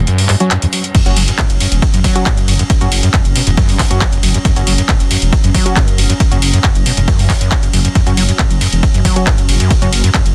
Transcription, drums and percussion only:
0.07 closed hi-hat soft
0.18 open hi-hat medium
0.29 clap medium
0.29 open hi-hat loud
0.40 closed hi-hat medium
0.51 clap loud
0.51 closed hi-hat medium
0.62 closed hi-hat medium
0.73 open hi-hat loud
0.84 closed hi-hat medium
0.95 kick loud
0.95 closed hi-hat medium
0.95 crash medium
0.95 ride medium
1.06 closed hi-hat medium
1.06 ride medium
1.17 open hi-hat loud
1.17 ride medium
1.28 closed hi-hat medium
1.28 ride medium
1.38 kick loud
1.38 clap loud
1.38 closed hi-hat medium
1.38 ride medium
1.50 closed hi-hat medium
1.50 ride medium
1.60 open hi-hat loud
1.60 ride medium
1.72 closed hi-hat medium
1.72 ride medium
1.82 kick loud
1.82 closed hi-hat soft
1.82 ride medium
1.94 closed hi-hat medium
1.94 ride medium
2.04 kick medium
2.04 open hi-hat loud
2.04 ride medium
2.16 closed hi-hat medium
2.16 ride medium
2.26 kick loud
2.26 clap loud
2.26 closed hi-hat medium
2.26 ride medium
2.37 closed hi-hat medium
2.37 ride medium
2.48 open hi-hat loud
2.48 ride medium
2.59 closed hi-hat medium
2.59 ride medium
2.70 kick loud
2.70 closed hi-hat medium
2.70 ride medium
2.81 closed hi-hat medium
2.81 ride medium
2.92 open hi-hat loud
2.92 ride medium
3.03 closed hi-hat medium
3.03 ride medium
3.14 kick loud
3.14 clap loud
3.14 closed hi-hat medium
3.14 ride medium
3.25 closed hi-hat medium
3.25 ride medium
3.36 open hi-hat loud
3.36 ride medium
3.47 closed hi-hat medium
3.47 ride medium
3.57 kick loud
3.57 closed hi-hat soft
3.57 ride medium
3.69 open hi-hat medium
3.69 ride medium
3.79 kick medium
3.79 clap medium
3.79 open hi-hat loud
3.79 ride medium
3.91 closed hi-hat medium
3.91 ride medium
4.01 kick loud
4.01 clap loud
4.01 closed hi-hat medium
4.01 ride medium
4.12 closed hi-hat medium
4.12 ride medium
4.23 open hi-hat loud
4.23 ride medium
4.34 closed hi-hat medium
4.34 ride medium
4.45 kick loud
4.45 closed hi-hat medium
4.45 ride medium
4.56 closed hi-hat medium
4.56 ride medium
4.67 open hi-hat loud
4.67 ride medium
4.78 closed hi-hat medium
4.78 ride medium
4.89 kick loud
4.89 clap loud
4.89 closed hi-hat medium
4.89 ride medium
5.00 closed hi-hat medium
5.00 ride medium
5.11 open hi-hat loud
5.11 ride medium
5.22 closed hi-hat medium
5.22 ride medium
5.33 kick loud
5.33 closed hi-hat soft
5.33 ride medium
5.44 closed hi-hat medium
5.44 ride medium
5.54 kick medium
5.54 open hi-hat loud
5.54 ride medium
5.66 closed hi-hat medium
5.66 ride medium
5.76 kick loud
5.76 clap loud
5.76 closed hi-hat medium
5.76 ride medium
5.88 closed hi-hat medium
5.88 ride medium
5.98 open hi-hat loud
5.98 ride medium
6.10 closed hi-hat medium
6.10 ride medium
6.20 kick loud
6.20 closed hi-hat medium
6.20 ride medium
6.32 closed hi-hat medium
6.32 ride medium
6.42 open hi-hat loud
6.42 ride medium
6.53 closed hi-hat medium
6.53 ride medium
6.64 kick loud
6.64 clap loud
6.64 closed hi-hat medium
6.64 ride medium
6.75 closed hi-hat medium
6.75 ride medium
6.86 open hi-hat loud
6.86 ride medium
6.97 closed hi-hat medium
6.97 ride medium
7.08 kick loud
7.08 closed hi-hat soft
7.08 ride medium
7.19 open hi-hat medium
7.19 ride medium
7.30 kick medium
7.30 clap medium
7.30 open hi-hat loud
7.30 ride medium
7.41 closed hi-hat medium
7.41 ride medium
7.52 kick loud
7.52 clap loud
7.52 closed hi-hat medium
7.52 ride medium
7.63 closed hi-hat medium
7.63 ride medium
7.73 open hi-hat loud
7.73 ride medium
7.85 closed hi-hat medium
7.85 ride medium
7.95 kick loud
7.95 closed hi-hat medium
7.95 ride medium
8.07 closed hi-hat soft
8.07 ride medium
8.17 open hi-hat loud
8.17 ride medium
8.29 closed hi-hat medium
8.29 ride medium
8.39 kick loud
8.39 clap loud
8.39 closed hi-hat medium
8.39 ride medium
8.51 closed hi-hat medium
8.51 ride medium
8.61 open hi-hat loud
8.61 ride medium
8.72 closed hi-hat medium
8.72 ride medium
8.83 kick loud
8.83 closed hi-hat soft
8.83 ride medium
8.94 closed hi-hat medium
8.94 ride medium
9.05 kick medium
9.05 open hi-hat loud
9.05 ride medium
9.16 closed hi-hat medium
9.16 ride medium
9.27 kick loud
9.27 clap loud
9.27 closed hi-hat medium
9.27 ride medium
9.38 closed hi-hat soft
9.38 ride medium
9.49 open hi-hat loud
9.49 ride medium
9.60 closed hi-hat soft
9.60 ride medium
9.71 kick loud
9.71 closed hi-hat medium
9.71 ride medium
9.82 closed hi-hat soft
9.82 ride medium
9.93 open hi-hat loud
9.93 ride medium
10.04 closed hi-hat medium
10.04 ride medium
10.14 kick loud
10.14 clap loud
10.14 closed hi-hat medium
10.14 ride medium
10.26 closed hi-hat soft
10.26 ride medium

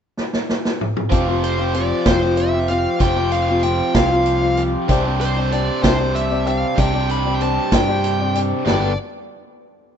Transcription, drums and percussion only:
0.17 snare medium
0.33 snare medium
0.49 snare medium
0.65 snare medium
0.81 mid tom medium
0.97 mid tom loud
1.12 kick loud
1.12 closed hi-hat medium
1.44 closed hi-hat medium
1.74 closed hi-hat medium
2.06 kick medium
2.06 snare loud
2.06 closed hi-hat medium
2.37 closed hi-hat medium
2.68 closed hi-hat medium
3.00 kick loud
3.00 closed hi-hat medium
3.32 closed hi-hat medium
3.63 closed hi-hat medium
3.95 kick medium
3.95 snare loud
3.95 closed hi-hat medium
4.26 closed hi-hat medium
4.57 closed hi-hat medium
4.89 kick medium
4.89 closed hi-hat medium
5.21 closed hi-hat medium
5.52 closed hi-hat medium
5.84 kick medium
5.84 snare loud
5.84 closed hi-hat medium
6.16 closed hi-hat medium
6.47 closed hi-hat medium
6.78 kick loud
6.78 closed hi-hat medium
7.09 closed hi-hat medium
7.41 closed hi-hat medium
7.72 kick medium
7.72 snare loud
7.72 closed hi-hat medium
8.04 closed hi-hat medium
8.35 closed hi-hat medium
8.67 snare loud
8.67 floor tom medium

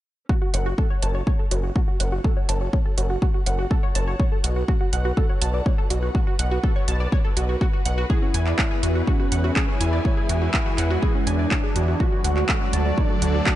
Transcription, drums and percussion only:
0.29 kick loud
0.54 closed hi-hat loud
0.78 kick loud
1.02 closed hi-hat medium
1.27 kick loud
1.51 closed hi-hat medium
1.76 kick loud
2.00 closed hi-hat medium
2.24 kick loud
2.49 closed hi-hat loud
2.73 kick loud
2.98 closed hi-hat medium
3.22 kick loud
3.46 closed hi-hat loud
3.71 kick loud
3.95 closed hi-hat medium
4.20 kick loud
4.44 closed hi-hat loud
4.68 kick loud
4.93 closed hi-hat medium
5.17 kick loud
5.42 closed hi-hat loud
5.66 kick loud
5.90 closed hi-hat medium
6.15 kick loud
6.39 closed hi-hat loud
6.64 kick loud
6.88 closed hi-hat medium
7.12 kick loud
7.37 closed hi-hat loud
7.61 kick loud
7.85 closed hi-hat medium
8.10 kick loud
8.34 closed hi-hat loud
8.47 clap soft
8.59 kick loud
8.59 clap loud
8.83 closed hi-hat medium
9.07 kick loud
9.32 closed hi-hat loud
9.56 kick loud
9.56 clap loud
9.81 closed hi-hat medium
10.05 kick loud
10.29 closed hi-hat loud
10.54 kick loud
10.54 clap loud
10.78 clap soft
10.78 closed hi-hat medium
11.03 kick loud
11.27 closed hi-hat medium
11.51 kick loud
11.51 clap loud
11.76 closed hi-hat medium
12.00 kick loud
12.24 closed hi-hat loud
12.37 clap soft
12.49 kick loud
12.49 clap loud
12.73 closed hi-hat medium
12.98 kick loud
13.22 closed hi-hat medium
13.46 kick loud
13.46 clap loud

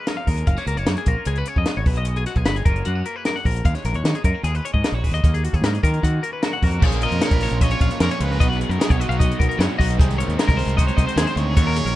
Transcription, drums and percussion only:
0.07 snare medium
0.07 closed hi-hat medium
0.27 kick medium
0.27 open hi-hat medium
0.38 closed hi-hat soft
0.47 kick medium
0.47 closed hi-hat medium
0.57 snare soft
0.57 closed hi-hat soft
0.67 closed hi-hat medium
0.77 closed hi-hat soft
0.86 snare loud
0.86 closed hi-hat medium
0.97 closed hi-hat soft
1.06 kick medium
1.06 closed hi-hat medium
1.25 closed hi-hat medium
1.36 closed hi-hat soft
1.46 closed hi-hat medium
1.56 kick medium
1.66 snare medium
1.66 closed hi-hat medium
1.86 kick medium
1.86 open hi-hat medium
1.96 closed hi-hat soft
2.05 closed hi-hat medium
2.16 closed hi-hat soft
2.26 snare soft
2.26 closed hi-hat medium
2.36 kick medium
2.36 closed hi-hat soft
2.45 snare loud
2.45 closed hi-hat medium
2.56 closed hi-hat soft
2.66 kick medium
2.66 closed hi-hat medium
2.76 closed hi-hat soft
2.85 closed hi-hat medium
3.06 closed hi-hat medium
3.25 snare medium
3.25 closed hi-hat medium
3.36 snare soft
3.45 kick medium
3.45 open hi-hat medium
3.56 closed hi-hat soft
3.65 kick medium
3.65 closed hi-hat medium
3.75 snare soft
3.75 closed hi-hat soft
3.85 snare soft
3.85 closed hi-hat medium
3.94 closed hi-hat soft
4.05 snare loud
4.05 closed hi-hat medium
4.15 closed hi-hat soft
4.24 kick medium
4.24 closed hi-hat medium
4.44 closed hi-hat medium
4.55 closed hi-hat soft
4.65 closed hi-hat medium
4.74 kick medium
4.84 snare loud
4.84 closed hi-hat medium
5.04 kick medium
5.04 open hi-hat medium
5.15 closed hi-hat soft
5.24 kick loud
5.24 closed hi-hat medium
5.34 closed hi-hat soft
5.45 closed hi-hat medium
5.53 kick medium
5.53 closed hi-hat soft
5.64 snare loud
5.64 closed hi-hat medium
5.75 closed hi-hat soft
5.83 kick medium
5.83 closed hi-hat medium
5.94 closed hi-hat soft
6.03 kick medium
6.03 closed hi-hat medium
6.24 closed hi-hat medium
6.43 snare loud
6.43 closed hi-hat medium
6.63 kick medium
6.63 open hi-hat medium
6.72 closed hi-hat soft
6.82 kick loud
6.82 crash loud
6.92 closed hi-hat soft
7.02 closed hi-hat medium
7.12 closed hi-hat soft
7.21 snare loud
7.21 closed hi-hat loud
7.31 kick medium
7.31 closed hi-hat soft
7.41 open hi-hat medium
7.51 closed hi-hat soft
7.61 kick medium
7.61 closed hi-hat loud
7.71 closed hi-hat soft
7.81 kick medium
7.81 closed hi-hat medium
7.91 snare soft
7.91 closed hi-hat soft
8.00 snare loud
8.00 closed hi-hat medium
8.11 closed hi-hat soft
8.21 closed hi-hat medium
8.31 snare soft
8.41 kick loud
8.41 closed hi-hat medium
8.52 snare soft
8.61 closed hi-hat medium
8.71 closed hi-hat soft
8.81 snare loud
8.81 closed hi-hat loud
8.90 kick medium
8.90 closed hi-hat soft
9.01 closed hi-hat medium
9.11 closed hi-hat soft
9.20 kick medium
9.20 closed hi-hat medium
9.32 closed hi-hat soft
9.40 kick medium
9.40 closed hi-hat medium
9.51 closed hi-hat soft
9.60 snare loud
9.60 closed hi-hat medium
9.80 kick medium
9.80 open hi-hat medium
9.90 closed hi-hat soft
9.99 kick loud
9.99 closed hi-hat medium
10.11 snare soft
10.11 closed hi-hat soft
10.20 closed hi-hat medium
10.30 closed hi-hat soft
10.39 snare loud
10.39 closed hi-hat loud
10.49 kick medium
10.49 closed hi-hat soft
10.59 open hi-hat medium
10.69 closed hi-hat soft
10.78 kick medium
10.78 closed hi-hat loud
10.88 closed hi-hat soft
10.98 kick medium
10.98 closed hi-hat medium
11.09 closed hi-hat soft
11.18 snare loud
11.18 closed hi-hat loud
11.27 snare soft
11.27 closed hi-hat soft
11.37 closed hi-hat medium
11.57 kick loud
11.57 closed hi-hat medium
11.68 snare soft
11.76 closed hi-hat medium
11.87 closed hi-hat soft

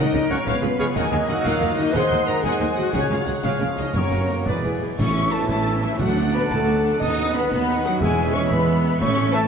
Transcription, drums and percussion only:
0.47 concert bass drum medium
0.47 snare medium
0.96 concert bass drum medium
0.96 snare loud
0.96 crash soft
1.28 snare medium
1.45 concert bass drum medium
1.45 snare medium
1.78 snare medium
1.95 concert bass drum medium
1.95 snare medium
2.44 concert bass drum medium
2.44 snare medium
2.93 concert bass drum loud
2.93 snare medium
2.93 crash soft
3.27 snare medium
3.43 concert bass drum medium
3.43 snare medium
3.77 snare medium
3.94 concert bass drum medium
3.94 snare medium
4.46 concert bass drum medium
4.46 snare medium
4.99 concert bass drum medium
4.99 snare medium
4.99 crash medium
4.99 tam-tam medium
5.49 concert bass drum medium
5.49 snare medium
5.83 snare medium
5.99 concert bass drum loud
5.99 snare medium
6.51 concert bass drum medium
6.51 snare medium
6.84 snare medium
7.01 concert bass drum loud
7.01 snare medium
7.01 crash soft
7.52 concert bass drum medium
7.52 snare medium
7.85 snare medium
8.02 concert bass drum loud
8.02 snare medium
8.51 concert bass drum medium
8.51 snare medium
8.84 snare medium
9.01 concert bass drum loud
9.01 snare medium
9.01 crash soft

